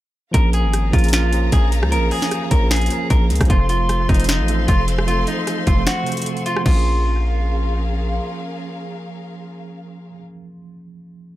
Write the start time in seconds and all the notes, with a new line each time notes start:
0.31 A#1 F3 A#3 C#4 G#4 A#4 C#5 F5 A#5, kick, closed hi-hat
0.36 A#4
0.53 G#4, closed hi-hat
0.64 G#1
0.73 cross-stick, closed hi-hat
0.91 A#1 F3 A#3 C#4 F4 G#4, kick, closed hi-hat
0.96 A#4, closed hi-hat
1.01 F3 A#3 C#4 G#4, closed hi-hat
1.07 A#4, closed hi-hat
1.13 F4, finger snap, snare, closed hi-hat
1.30 F3 A#3 C#4 G#4, closed hi-hat
1.35 A#4
1.52 A#1 G#4, kick, closed hi-hat
1.72 closed hi-hat
1.83 C#2, cross-stick
1.89 F3 A#3 C#4 G#4 A#4, closed hi-hat
1.94 A#1 A#4
2.11 G#4, open hi-hat
2.22 snare
2.31 cross-stick, closed hi-hat
2.51 A#1 A#4, kick, closed hi-hat
2.59 F3 A#3 C#4 G#4
2.64 A#4
2.71 G#4, finger snap, snare, closed hi-hat
2.76 closed hi-hat
2.81 closed hi-hat
2.86 F3 A#3, closed hi-hat
2.90 C#4 G#4 A#4, closed hi-hat
3.10 A#1 A#4, kick, closed hi-hat
3.30 C#2, closed hi-hat
3.35 closed hi-hat
3.41 A#1, kick, cross-stick, closed hi-hat
3.45 F3 A3, closed hi-hat
3.50 F1 C4 F4 A4 C5 F5 C6, kick, closed hi-hat
3.69 F4, closed hi-hat
3.89 cross-stick, closed hi-hat
4.07 F1 F3 A3 C4 D#4 A4, kick, closed hi-hat
4.12 C5, closed hi-hat
4.17 F3 A3 C4 A4, closed hi-hat
4.22 C5, closed hi-hat
4.29 D#4, finger snap, snare, closed hi-hat
4.39 A1
4.46 F3 A3 C4 A4, closed hi-hat
4.51 C5
4.68 F1 F4, kick, closed hi-hat
4.88 closed hi-hat
4.99 cross-stick
5.06 F3 A3 C4 F4 A4, closed hi-hat
5.11 C5
5.27 D#4, closed hi-hat
5.47 cross-stick, closed hi-hat
5.67 F1 F4, kick, closed hi-hat
5.75 F3 A3 C4 A4
5.80 C5
5.87 F#4, finger snap, snare, closed hi-hat
6.03 C3 A3 C4 A4, closed hi-hat
6.09 C5, closed hi-hat
6.17 closed hi-hat
6.22 closed hi-hat
6.26 closed hi-hat
6.37 closed hi-hat
6.46 F4, closed hi-hat
6.56 F3, cross-stick
6.62 A#1 A#3 C#4 F4 G#4 A#4 F5, kick, crash
6.69 C#4
6.76 G#4